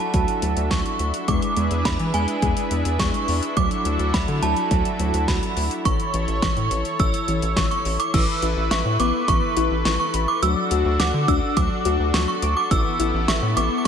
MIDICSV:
0, 0, Header, 1, 6, 480
1, 0, Start_track
1, 0, Tempo, 571429
1, 1077, Time_signature, 4, 2, 24, 8
1, 11656, End_track
2, 0, Start_track
2, 0, Title_t, "Synth bell"
2, 0, Program_c, 0, 98
2, 0, Note_on_c, 0, 81, 90
2, 596, Note_on_c, 0, 85, 88
2, 618, Note_off_c, 0, 81, 0
2, 1077, Note_on_c, 0, 86, 93
2, 1091, Note_off_c, 0, 85, 0
2, 1556, Note_on_c, 0, 83, 93
2, 1571, Note_off_c, 0, 86, 0
2, 1796, Note_on_c, 0, 80, 92
2, 1804, Note_off_c, 0, 83, 0
2, 2516, Note_on_c, 0, 85, 94
2, 2538, Note_off_c, 0, 80, 0
2, 2997, Note_on_c, 0, 86, 100
2, 3011, Note_off_c, 0, 85, 0
2, 3476, Note_on_c, 0, 83, 94
2, 3491, Note_off_c, 0, 86, 0
2, 3717, Note_on_c, 0, 81, 97
2, 3724, Note_off_c, 0, 83, 0
2, 4436, Note_on_c, 0, 83, 91
2, 4458, Note_off_c, 0, 81, 0
2, 4883, Note_off_c, 0, 83, 0
2, 4917, Note_on_c, 0, 85, 102
2, 5386, Note_off_c, 0, 85, 0
2, 5396, Note_on_c, 0, 85, 102
2, 5843, Note_off_c, 0, 85, 0
2, 5877, Note_on_c, 0, 88, 101
2, 6356, Note_on_c, 0, 85, 78
2, 6465, Note_off_c, 0, 85, 0
2, 6476, Note_on_c, 0, 85, 77
2, 6563, Note_off_c, 0, 88, 0
2, 6716, Note_on_c, 0, 86, 81
2, 6723, Note_off_c, 0, 85, 0
2, 6836, Note_on_c, 0, 88, 89
2, 6840, Note_off_c, 0, 86, 0
2, 7316, Note_on_c, 0, 85, 84
2, 7331, Note_off_c, 0, 88, 0
2, 7557, Note_on_c, 0, 86, 87
2, 7564, Note_off_c, 0, 85, 0
2, 7780, Note_off_c, 0, 86, 0
2, 7797, Note_on_c, 0, 85, 88
2, 8243, Note_off_c, 0, 85, 0
2, 8277, Note_on_c, 0, 85, 85
2, 8386, Note_off_c, 0, 85, 0
2, 8396, Note_on_c, 0, 85, 77
2, 8636, Note_on_c, 0, 86, 86
2, 8644, Note_off_c, 0, 85, 0
2, 8757, Note_on_c, 0, 88, 97
2, 8760, Note_off_c, 0, 86, 0
2, 9203, Note_off_c, 0, 88, 0
2, 9237, Note_on_c, 0, 86, 86
2, 9477, Note_on_c, 0, 88, 91
2, 9484, Note_off_c, 0, 86, 0
2, 9700, Note_off_c, 0, 88, 0
2, 9717, Note_on_c, 0, 86, 92
2, 10196, Note_on_c, 0, 85, 87
2, 10211, Note_off_c, 0, 86, 0
2, 10306, Note_off_c, 0, 85, 0
2, 10316, Note_on_c, 0, 85, 81
2, 10556, Note_on_c, 0, 86, 85
2, 10564, Note_off_c, 0, 85, 0
2, 10668, Note_off_c, 0, 86, 0
2, 10677, Note_on_c, 0, 88, 99
2, 11156, Note_on_c, 0, 85, 88
2, 11171, Note_off_c, 0, 88, 0
2, 11380, Note_off_c, 0, 85, 0
2, 11396, Note_on_c, 0, 86, 92
2, 11565, Note_off_c, 0, 86, 0
2, 11577, Note_on_c, 0, 86, 70
2, 11636, Note_off_c, 0, 86, 0
2, 11656, End_track
3, 0, Start_track
3, 0, Title_t, "Analog synth pad"
3, 0, Program_c, 1, 89
3, 0, Note_on_c, 1, 62, 83
3, 0, Note_on_c, 1, 64, 73
3, 0, Note_on_c, 1, 66, 74
3, 0, Note_on_c, 1, 69, 70
3, 0, Note_on_c, 1, 76, 84
3, 1057, Note_off_c, 1, 66, 0
3, 1058, Note_off_c, 1, 69, 0
3, 1077, Note_on_c, 1, 68, 72
3, 1077, Note_on_c, 1, 71, 74
3, 2978, Note_off_c, 1, 68, 0
3, 2978, Note_off_c, 1, 71, 0
3, 2997, Note_on_c, 1, 66, 73
3, 2997, Note_on_c, 1, 69, 74
3, 4883, Note_off_c, 1, 62, 0
3, 4883, Note_off_c, 1, 76, 0
3, 4898, Note_off_c, 1, 66, 0
3, 4898, Note_off_c, 1, 69, 0
3, 4918, Note_on_c, 1, 69, 72
3, 4918, Note_on_c, 1, 73, 88
3, 6803, Note_off_c, 1, 64, 0
3, 6818, Note_off_c, 1, 69, 0
3, 6818, Note_off_c, 1, 73, 0
3, 6836, Note_on_c, 1, 64, 82
3, 6836, Note_on_c, 1, 69, 75
3, 6836, Note_on_c, 1, 71, 88
3, 8737, Note_off_c, 1, 64, 0
3, 8737, Note_off_c, 1, 71, 0
3, 8757, Note_on_c, 1, 62, 81
3, 8757, Note_on_c, 1, 66, 76
3, 10658, Note_off_c, 1, 62, 0
3, 10658, Note_off_c, 1, 66, 0
3, 10677, Note_on_c, 1, 59, 81
3, 10677, Note_on_c, 1, 64, 77
3, 11656, Note_off_c, 1, 59, 0
3, 11656, Note_off_c, 1, 64, 0
3, 11656, Note_off_c, 1, 69, 0
3, 11656, End_track
4, 0, Start_track
4, 0, Title_t, "Synth pluck"
4, 0, Program_c, 2, 84
4, 0, Note_on_c, 2, 54, 77
4, 101, Note_off_c, 2, 54, 0
4, 116, Note_on_c, 2, 54, 89
4, 341, Note_off_c, 2, 54, 0
4, 356, Note_on_c, 2, 54, 77
4, 581, Note_off_c, 2, 54, 0
4, 596, Note_on_c, 2, 54, 84
4, 821, Note_off_c, 2, 54, 0
4, 1076, Note_on_c, 2, 56, 92
4, 1301, Note_off_c, 2, 56, 0
4, 1316, Note_on_c, 2, 56, 79
4, 1541, Note_off_c, 2, 56, 0
4, 1556, Note_on_c, 2, 56, 86
4, 1781, Note_off_c, 2, 56, 0
4, 1796, Note_on_c, 2, 56, 79
4, 2021, Note_off_c, 2, 56, 0
4, 2036, Note_on_c, 2, 56, 91
4, 2261, Note_off_c, 2, 56, 0
4, 2277, Note_on_c, 2, 56, 78
4, 2501, Note_off_c, 2, 56, 0
4, 2517, Note_on_c, 2, 56, 84
4, 2741, Note_off_c, 2, 56, 0
4, 2997, Note_on_c, 2, 54, 94
4, 3221, Note_off_c, 2, 54, 0
4, 3237, Note_on_c, 2, 54, 79
4, 3461, Note_off_c, 2, 54, 0
4, 3477, Note_on_c, 2, 54, 81
4, 3701, Note_off_c, 2, 54, 0
4, 3717, Note_on_c, 2, 54, 81
4, 3941, Note_off_c, 2, 54, 0
4, 3957, Note_on_c, 2, 54, 91
4, 4181, Note_off_c, 2, 54, 0
4, 4197, Note_on_c, 2, 54, 77
4, 4421, Note_off_c, 2, 54, 0
4, 4437, Note_on_c, 2, 54, 84
4, 4661, Note_off_c, 2, 54, 0
4, 4918, Note_on_c, 2, 52, 94
4, 5141, Note_off_c, 2, 52, 0
4, 5158, Note_on_c, 2, 52, 75
4, 5381, Note_off_c, 2, 52, 0
4, 5398, Note_on_c, 2, 52, 81
4, 5621, Note_off_c, 2, 52, 0
4, 5637, Note_on_c, 2, 52, 79
4, 5861, Note_off_c, 2, 52, 0
4, 5877, Note_on_c, 2, 52, 92
4, 6101, Note_off_c, 2, 52, 0
4, 6117, Note_on_c, 2, 52, 78
4, 6341, Note_off_c, 2, 52, 0
4, 6357, Note_on_c, 2, 52, 84
4, 6581, Note_off_c, 2, 52, 0
4, 6837, Note_on_c, 2, 52, 94
4, 7061, Note_off_c, 2, 52, 0
4, 7077, Note_on_c, 2, 64, 83
4, 7301, Note_off_c, 2, 64, 0
4, 7317, Note_on_c, 2, 76, 93
4, 7541, Note_off_c, 2, 76, 0
4, 7557, Note_on_c, 2, 59, 83
4, 7781, Note_off_c, 2, 59, 0
4, 7797, Note_on_c, 2, 52, 86
4, 8021, Note_off_c, 2, 52, 0
4, 8037, Note_on_c, 2, 64, 88
4, 8261, Note_off_c, 2, 64, 0
4, 8277, Note_on_c, 2, 52, 82
4, 8501, Note_off_c, 2, 52, 0
4, 8517, Note_on_c, 2, 83, 99
4, 8741, Note_off_c, 2, 83, 0
4, 8757, Note_on_c, 2, 54, 96
4, 8981, Note_off_c, 2, 54, 0
4, 8997, Note_on_c, 2, 66, 86
4, 9221, Note_off_c, 2, 66, 0
4, 9237, Note_on_c, 2, 78, 98
4, 9461, Note_off_c, 2, 78, 0
4, 9477, Note_on_c, 2, 62, 86
4, 9701, Note_off_c, 2, 62, 0
4, 9717, Note_on_c, 2, 54, 94
4, 9941, Note_off_c, 2, 54, 0
4, 9957, Note_on_c, 2, 66, 88
4, 10181, Note_off_c, 2, 66, 0
4, 10197, Note_on_c, 2, 54, 85
4, 10421, Note_off_c, 2, 54, 0
4, 10437, Note_on_c, 2, 86, 97
4, 10661, Note_off_c, 2, 86, 0
4, 10677, Note_on_c, 2, 52, 96
4, 10901, Note_off_c, 2, 52, 0
4, 10917, Note_on_c, 2, 64, 88
4, 11141, Note_off_c, 2, 64, 0
4, 11157, Note_on_c, 2, 76, 92
4, 11381, Note_off_c, 2, 76, 0
4, 11397, Note_on_c, 2, 59, 84
4, 11621, Note_off_c, 2, 59, 0
4, 11656, End_track
5, 0, Start_track
5, 0, Title_t, "Analog synth bass"
5, 0, Program_c, 3, 38
5, 116, Note_on_c, 3, 38, 107
5, 222, Note_off_c, 3, 38, 0
5, 357, Note_on_c, 3, 38, 92
5, 462, Note_off_c, 3, 38, 0
5, 476, Note_on_c, 3, 38, 101
5, 581, Note_off_c, 3, 38, 0
5, 594, Note_on_c, 3, 38, 101
5, 700, Note_off_c, 3, 38, 0
5, 836, Note_on_c, 3, 38, 96
5, 941, Note_off_c, 3, 38, 0
5, 1076, Note_on_c, 3, 40, 92
5, 1181, Note_off_c, 3, 40, 0
5, 1316, Note_on_c, 3, 40, 96
5, 1421, Note_off_c, 3, 40, 0
5, 1436, Note_on_c, 3, 40, 101
5, 1541, Note_off_c, 3, 40, 0
5, 1559, Note_on_c, 3, 40, 108
5, 1663, Note_off_c, 3, 40, 0
5, 1677, Note_on_c, 3, 52, 101
5, 1782, Note_off_c, 3, 52, 0
5, 1797, Note_on_c, 3, 40, 96
5, 1902, Note_off_c, 3, 40, 0
5, 2036, Note_on_c, 3, 40, 103
5, 2141, Note_off_c, 3, 40, 0
5, 2277, Note_on_c, 3, 40, 96
5, 2382, Note_off_c, 3, 40, 0
5, 2397, Note_on_c, 3, 40, 98
5, 2502, Note_off_c, 3, 40, 0
5, 2514, Note_on_c, 3, 40, 103
5, 2620, Note_off_c, 3, 40, 0
5, 2757, Note_on_c, 3, 40, 107
5, 2862, Note_off_c, 3, 40, 0
5, 2997, Note_on_c, 3, 38, 105
5, 3102, Note_off_c, 3, 38, 0
5, 3237, Note_on_c, 3, 38, 99
5, 3342, Note_off_c, 3, 38, 0
5, 3357, Note_on_c, 3, 38, 101
5, 3462, Note_off_c, 3, 38, 0
5, 3479, Note_on_c, 3, 38, 101
5, 3583, Note_off_c, 3, 38, 0
5, 3596, Note_on_c, 3, 50, 106
5, 3702, Note_off_c, 3, 50, 0
5, 3716, Note_on_c, 3, 38, 97
5, 3821, Note_off_c, 3, 38, 0
5, 3957, Note_on_c, 3, 38, 97
5, 4062, Note_off_c, 3, 38, 0
5, 4196, Note_on_c, 3, 38, 98
5, 4301, Note_off_c, 3, 38, 0
5, 4317, Note_on_c, 3, 38, 103
5, 4422, Note_off_c, 3, 38, 0
5, 4435, Note_on_c, 3, 38, 102
5, 4540, Note_off_c, 3, 38, 0
5, 4676, Note_on_c, 3, 38, 98
5, 4781, Note_off_c, 3, 38, 0
5, 4917, Note_on_c, 3, 33, 98
5, 5022, Note_off_c, 3, 33, 0
5, 5157, Note_on_c, 3, 33, 107
5, 5262, Note_off_c, 3, 33, 0
5, 5277, Note_on_c, 3, 33, 104
5, 5382, Note_off_c, 3, 33, 0
5, 5400, Note_on_c, 3, 33, 104
5, 5503, Note_off_c, 3, 33, 0
5, 5517, Note_on_c, 3, 45, 102
5, 5622, Note_off_c, 3, 45, 0
5, 5637, Note_on_c, 3, 33, 104
5, 5742, Note_off_c, 3, 33, 0
5, 5877, Note_on_c, 3, 33, 99
5, 5982, Note_off_c, 3, 33, 0
5, 6117, Note_on_c, 3, 33, 94
5, 6222, Note_off_c, 3, 33, 0
5, 6237, Note_on_c, 3, 33, 100
5, 6342, Note_off_c, 3, 33, 0
5, 6354, Note_on_c, 3, 33, 104
5, 6460, Note_off_c, 3, 33, 0
5, 6597, Note_on_c, 3, 33, 104
5, 6702, Note_off_c, 3, 33, 0
5, 6837, Note_on_c, 3, 33, 99
5, 6942, Note_off_c, 3, 33, 0
5, 7077, Note_on_c, 3, 33, 110
5, 7182, Note_off_c, 3, 33, 0
5, 7197, Note_on_c, 3, 33, 100
5, 7302, Note_off_c, 3, 33, 0
5, 7318, Note_on_c, 3, 33, 99
5, 7422, Note_off_c, 3, 33, 0
5, 7438, Note_on_c, 3, 45, 102
5, 7542, Note_off_c, 3, 45, 0
5, 7557, Note_on_c, 3, 33, 101
5, 7662, Note_off_c, 3, 33, 0
5, 7797, Note_on_c, 3, 33, 104
5, 7902, Note_off_c, 3, 33, 0
5, 8037, Note_on_c, 3, 33, 105
5, 8142, Note_off_c, 3, 33, 0
5, 8157, Note_on_c, 3, 33, 90
5, 8262, Note_off_c, 3, 33, 0
5, 8277, Note_on_c, 3, 33, 122
5, 8382, Note_off_c, 3, 33, 0
5, 8517, Note_on_c, 3, 33, 105
5, 8622, Note_off_c, 3, 33, 0
5, 8757, Note_on_c, 3, 38, 110
5, 8862, Note_off_c, 3, 38, 0
5, 8998, Note_on_c, 3, 38, 102
5, 9102, Note_off_c, 3, 38, 0
5, 9117, Note_on_c, 3, 38, 103
5, 9222, Note_off_c, 3, 38, 0
5, 9237, Note_on_c, 3, 38, 96
5, 9342, Note_off_c, 3, 38, 0
5, 9357, Note_on_c, 3, 50, 105
5, 9462, Note_off_c, 3, 50, 0
5, 9477, Note_on_c, 3, 38, 99
5, 9582, Note_off_c, 3, 38, 0
5, 9717, Note_on_c, 3, 38, 107
5, 9822, Note_off_c, 3, 38, 0
5, 9957, Note_on_c, 3, 38, 105
5, 10062, Note_off_c, 3, 38, 0
5, 10077, Note_on_c, 3, 38, 98
5, 10182, Note_off_c, 3, 38, 0
5, 10196, Note_on_c, 3, 38, 112
5, 10301, Note_off_c, 3, 38, 0
5, 10437, Note_on_c, 3, 38, 106
5, 10542, Note_off_c, 3, 38, 0
5, 10677, Note_on_c, 3, 33, 106
5, 10782, Note_off_c, 3, 33, 0
5, 10917, Note_on_c, 3, 33, 104
5, 11022, Note_off_c, 3, 33, 0
5, 11037, Note_on_c, 3, 33, 106
5, 11142, Note_off_c, 3, 33, 0
5, 11157, Note_on_c, 3, 33, 102
5, 11262, Note_off_c, 3, 33, 0
5, 11277, Note_on_c, 3, 45, 103
5, 11382, Note_off_c, 3, 45, 0
5, 11397, Note_on_c, 3, 33, 100
5, 11502, Note_off_c, 3, 33, 0
5, 11656, End_track
6, 0, Start_track
6, 0, Title_t, "Drums"
6, 115, Note_on_c, 9, 42, 74
6, 116, Note_on_c, 9, 36, 109
6, 199, Note_off_c, 9, 42, 0
6, 200, Note_off_c, 9, 36, 0
6, 236, Note_on_c, 9, 42, 60
6, 320, Note_off_c, 9, 42, 0
6, 355, Note_on_c, 9, 42, 71
6, 439, Note_off_c, 9, 42, 0
6, 476, Note_on_c, 9, 42, 54
6, 560, Note_off_c, 9, 42, 0
6, 594, Note_on_c, 9, 36, 110
6, 596, Note_on_c, 9, 38, 109
6, 597, Note_on_c, 9, 42, 77
6, 678, Note_off_c, 9, 36, 0
6, 680, Note_off_c, 9, 38, 0
6, 681, Note_off_c, 9, 42, 0
6, 719, Note_on_c, 9, 42, 48
6, 803, Note_off_c, 9, 42, 0
6, 835, Note_on_c, 9, 42, 74
6, 919, Note_off_c, 9, 42, 0
6, 956, Note_on_c, 9, 42, 63
6, 1040, Note_off_c, 9, 42, 0
6, 1075, Note_on_c, 9, 42, 79
6, 1076, Note_on_c, 9, 36, 102
6, 1159, Note_off_c, 9, 42, 0
6, 1160, Note_off_c, 9, 36, 0
6, 1196, Note_on_c, 9, 42, 52
6, 1280, Note_off_c, 9, 42, 0
6, 1315, Note_on_c, 9, 42, 76
6, 1399, Note_off_c, 9, 42, 0
6, 1434, Note_on_c, 9, 42, 47
6, 1518, Note_off_c, 9, 42, 0
6, 1555, Note_on_c, 9, 38, 113
6, 1557, Note_on_c, 9, 42, 78
6, 1559, Note_on_c, 9, 36, 106
6, 1639, Note_off_c, 9, 38, 0
6, 1641, Note_off_c, 9, 42, 0
6, 1643, Note_off_c, 9, 36, 0
6, 1676, Note_on_c, 9, 42, 55
6, 1760, Note_off_c, 9, 42, 0
6, 1796, Note_on_c, 9, 42, 71
6, 1880, Note_off_c, 9, 42, 0
6, 1914, Note_on_c, 9, 42, 51
6, 1998, Note_off_c, 9, 42, 0
6, 2036, Note_on_c, 9, 36, 107
6, 2036, Note_on_c, 9, 42, 77
6, 2120, Note_off_c, 9, 36, 0
6, 2120, Note_off_c, 9, 42, 0
6, 2156, Note_on_c, 9, 42, 63
6, 2240, Note_off_c, 9, 42, 0
6, 2275, Note_on_c, 9, 42, 75
6, 2359, Note_off_c, 9, 42, 0
6, 2396, Note_on_c, 9, 42, 53
6, 2480, Note_off_c, 9, 42, 0
6, 2514, Note_on_c, 9, 36, 114
6, 2516, Note_on_c, 9, 38, 113
6, 2517, Note_on_c, 9, 42, 78
6, 2598, Note_off_c, 9, 36, 0
6, 2600, Note_off_c, 9, 38, 0
6, 2601, Note_off_c, 9, 42, 0
6, 2639, Note_on_c, 9, 42, 48
6, 2723, Note_off_c, 9, 42, 0
6, 2756, Note_on_c, 9, 46, 75
6, 2840, Note_off_c, 9, 46, 0
6, 2877, Note_on_c, 9, 42, 61
6, 2961, Note_off_c, 9, 42, 0
6, 2997, Note_on_c, 9, 36, 105
6, 2997, Note_on_c, 9, 42, 76
6, 3081, Note_off_c, 9, 36, 0
6, 3081, Note_off_c, 9, 42, 0
6, 3117, Note_on_c, 9, 42, 54
6, 3201, Note_off_c, 9, 42, 0
6, 3236, Note_on_c, 9, 42, 78
6, 3320, Note_off_c, 9, 42, 0
6, 3356, Note_on_c, 9, 42, 47
6, 3440, Note_off_c, 9, 42, 0
6, 3476, Note_on_c, 9, 38, 110
6, 3478, Note_on_c, 9, 42, 78
6, 3480, Note_on_c, 9, 36, 108
6, 3560, Note_off_c, 9, 38, 0
6, 3562, Note_off_c, 9, 42, 0
6, 3564, Note_off_c, 9, 36, 0
6, 3596, Note_on_c, 9, 42, 57
6, 3680, Note_off_c, 9, 42, 0
6, 3717, Note_on_c, 9, 42, 74
6, 3801, Note_off_c, 9, 42, 0
6, 3835, Note_on_c, 9, 42, 50
6, 3919, Note_off_c, 9, 42, 0
6, 3956, Note_on_c, 9, 42, 76
6, 3957, Note_on_c, 9, 36, 112
6, 4040, Note_off_c, 9, 42, 0
6, 4041, Note_off_c, 9, 36, 0
6, 4077, Note_on_c, 9, 42, 61
6, 4161, Note_off_c, 9, 42, 0
6, 4196, Note_on_c, 9, 42, 74
6, 4280, Note_off_c, 9, 42, 0
6, 4317, Note_on_c, 9, 42, 54
6, 4401, Note_off_c, 9, 42, 0
6, 4435, Note_on_c, 9, 36, 117
6, 4437, Note_on_c, 9, 38, 112
6, 4438, Note_on_c, 9, 42, 78
6, 4519, Note_off_c, 9, 36, 0
6, 4521, Note_off_c, 9, 38, 0
6, 4522, Note_off_c, 9, 42, 0
6, 4560, Note_on_c, 9, 42, 49
6, 4644, Note_off_c, 9, 42, 0
6, 4676, Note_on_c, 9, 46, 76
6, 4760, Note_off_c, 9, 46, 0
6, 4797, Note_on_c, 9, 42, 64
6, 4881, Note_off_c, 9, 42, 0
6, 4917, Note_on_c, 9, 36, 111
6, 4917, Note_on_c, 9, 42, 80
6, 5001, Note_off_c, 9, 36, 0
6, 5001, Note_off_c, 9, 42, 0
6, 5037, Note_on_c, 9, 42, 54
6, 5121, Note_off_c, 9, 42, 0
6, 5155, Note_on_c, 9, 42, 79
6, 5239, Note_off_c, 9, 42, 0
6, 5275, Note_on_c, 9, 42, 47
6, 5359, Note_off_c, 9, 42, 0
6, 5396, Note_on_c, 9, 38, 112
6, 5398, Note_on_c, 9, 42, 79
6, 5399, Note_on_c, 9, 36, 111
6, 5480, Note_off_c, 9, 38, 0
6, 5482, Note_off_c, 9, 42, 0
6, 5483, Note_off_c, 9, 36, 0
6, 5516, Note_on_c, 9, 42, 57
6, 5600, Note_off_c, 9, 42, 0
6, 5637, Note_on_c, 9, 42, 72
6, 5721, Note_off_c, 9, 42, 0
6, 5754, Note_on_c, 9, 42, 51
6, 5838, Note_off_c, 9, 42, 0
6, 5876, Note_on_c, 9, 42, 75
6, 5877, Note_on_c, 9, 36, 116
6, 5960, Note_off_c, 9, 42, 0
6, 5961, Note_off_c, 9, 36, 0
6, 5997, Note_on_c, 9, 42, 62
6, 6081, Note_off_c, 9, 42, 0
6, 6116, Note_on_c, 9, 42, 74
6, 6200, Note_off_c, 9, 42, 0
6, 6236, Note_on_c, 9, 42, 55
6, 6320, Note_off_c, 9, 42, 0
6, 6354, Note_on_c, 9, 36, 114
6, 6356, Note_on_c, 9, 38, 114
6, 6358, Note_on_c, 9, 42, 79
6, 6438, Note_off_c, 9, 36, 0
6, 6440, Note_off_c, 9, 38, 0
6, 6442, Note_off_c, 9, 42, 0
6, 6480, Note_on_c, 9, 42, 51
6, 6564, Note_off_c, 9, 42, 0
6, 6596, Note_on_c, 9, 46, 76
6, 6680, Note_off_c, 9, 46, 0
6, 6717, Note_on_c, 9, 42, 63
6, 6801, Note_off_c, 9, 42, 0
6, 6837, Note_on_c, 9, 36, 111
6, 6837, Note_on_c, 9, 42, 80
6, 6837, Note_on_c, 9, 49, 97
6, 6921, Note_off_c, 9, 36, 0
6, 6921, Note_off_c, 9, 42, 0
6, 6921, Note_off_c, 9, 49, 0
6, 7076, Note_on_c, 9, 42, 81
6, 7160, Note_off_c, 9, 42, 0
6, 7317, Note_on_c, 9, 38, 116
6, 7318, Note_on_c, 9, 42, 81
6, 7401, Note_off_c, 9, 38, 0
6, 7402, Note_off_c, 9, 42, 0
6, 7557, Note_on_c, 9, 42, 73
6, 7641, Note_off_c, 9, 42, 0
6, 7797, Note_on_c, 9, 36, 94
6, 7797, Note_on_c, 9, 42, 79
6, 7881, Note_off_c, 9, 36, 0
6, 7881, Note_off_c, 9, 42, 0
6, 8035, Note_on_c, 9, 42, 75
6, 8119, Note_off_c, 9, 42, 0
6, 8277, Note_on_c, 9, 38, 114
6, 8278, Note_on_c, 9, 42, 77
6, 8361, Note_off_c, 9, 38, 0
6, 8362, Note_off_c, 9, 42, 0
6, 8516, Note_on_c, 9, 42, 77
6, 8600, Note_off_c, 9, 42, 0
6, 8757, Note_on_c, 9, 42, 78
6, 8841, Note_off_c, 9, 42, 0
6, 8996, Note_on_c, 9, 42, 79
6, 9080, Note_off_c, 9, 42, 0
6, 9237, Note_on_c, 9, 38, 117
6, 9238, Note_on_c, 9, 42, 82
6, 9321, Note_off_c, 9, 38, 0
6, 9322, Note_off_c, 9, 42, 0
6, 9477, Note_on_c, 9, 36, 91
6, 9478, Note_on_c, 9, 42, 74
6, 9561, Note_off_c, 9, 36, 0
6, 9562, Note_off_c, 9, 42, 0
6, 9717, Note_on_c, 9, 36, 95
6, 9717, Note_on_c, 9, 42, 77
6, 9801, Note_off_c, 9, 36, 0
6, 9801, Note_off_c, 9, 42, 0
6, 9956, Note_on_c, 9, 42, 73
6, 10040, Note_off_c, 9, 42, 0
6, 10197, Note_on_c, 9, 38, 116
6, 10198, Note_on_c, 9, 42, 77
6, 10281, Note_off_c, 9, 38, 0
6, 10282, Note_off_c, 9, 42, 0
6, 10436, Note_on_c, 9, 42, 79
6, 10520, Note_off_c, 9, 42, 0
6, 10677, Note_on_c, 9, 36, 109
6, 10677, Note_on_c, 9, 42, 77
6, 10761, Note_off_c, 9, 36, 0
6, 10761, Note_off_c, 9, 42, 0
6, 10917, Note_on_c, 9, 42, 80
6, 11001, Note_off_c, 9, 42, 0
6, 11157, Note_on_c, 9, 38, 118
6, 11159, Note_on_c, 9, 42, 82
6, 11241, Note_off_c, 9, 38, 0
6, 11243, Note_off_c, 9, 42, 0
6, 11398, Note_on_c, 9, 42, 75
6, 11482, Note_off_c, 9, 42, 0
6, 11656, End_track
0, 0, End_of_file